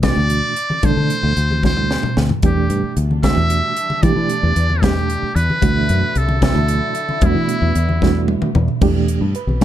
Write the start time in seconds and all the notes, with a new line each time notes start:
Already playing: C2
0.02 B2 E3 A3 D4 F#4 D5, kick, snare, closed hi-hat, high conga
0.17 D2, low conga
0.30 closed hi-hat, low conga
0.56 closed hi-hat
0.70 low conga
0.83 B2 D3 E3 A3 D4 A4 C5, kick, closed hi-hat, high conga, low conga
0.97 D3, low conga
1.10 closed hi-hat, low conga
1.23 D2, low conga
1.37 D2, closed hi-hat, low conga
1.51 low conga
1.63 B2 E3 A3 D4 F#4 C5, kick, snare, high conga, low conga
1.77 high tom
1.91 snare
2.03 muted fingered electric bass stroke, mid tom, low conga
2.17 D2, snare
2.29 floor tom, low conga
2.43 E2 B2 E3 G3 A3 D4 G4, kick, closed hi-hat, high conga
2.70 G2, closed hi-hat
2.83 muted fingered electric bass stroke
2.97 D2, closed hi-hat, low conga
3.11 low conga
3.22 B2 E3 A3 D4 F#4 E5, kick, snare, closed hi-hat, high conga
3.37 E2, low conga
3.50 closed hi-hat, low conga
3.77 closed hi-hat
3.90 low conga
4.03 B2 E3 A3 D4 G4 D5, kick, closed hi-hat, high conga
4.16 E3
4.29 closed hi-hat
4.43 E2
4.56 E2, closed hi-hat, low conga
4.69 low conga
4.82 B2 E3 A3 D4 G4, kick, snare, closed hi-hat, high conga
4.96 low conga
5.09 closed hi-hat, low conga
5.23 muted fingered electric bass stroke
5.35 E2 B4, closed hi-hat
5.50 low conga
5.62 D2 B2 D3 E3 F#3 A3 D4 E4 F#4, kick, closed hi-hat, high conga
5.89 F#2, closed hi-hat
6.03 muted fingered electric bass stroke
6.15 C2 A4, closed hi-hat, low conga
6.29 low conga
6.42 B2 E3 A3 D4 F#4 A4, kick, snare, closed hi-hat, high conga
6.55 D2, low conga
6.68 closed hi-hat, low conga
6.95 closed hi-hat
7.09 low conga
7.21 E2 B2 E3 G3 A3 B3 D4 E4 F#4, kick, closed hi-hat, high conga, low conga
7.35 E3
7.49 closed hi-hat, low conga
7.62 E2
7.75 E2, closed hi-hat
7.89 low conga
8.02 B2 E3 A3 D4 F#4, kick, snare, high conga
8.15 low conga
8.28 high tom
8.42 muted fingered electric bass stroke, mid tom
8.55 E2, mid tom
8.68 low conga
8.81 E2 B2 E3 A3 D4 G4, kick, crash, high conga
9.08 closed hi-hat
9.21 G2
9.35 B4, closed hi-hat
9.47 B1, low conga
9.61 B2 E3, closed hi-hat, high conga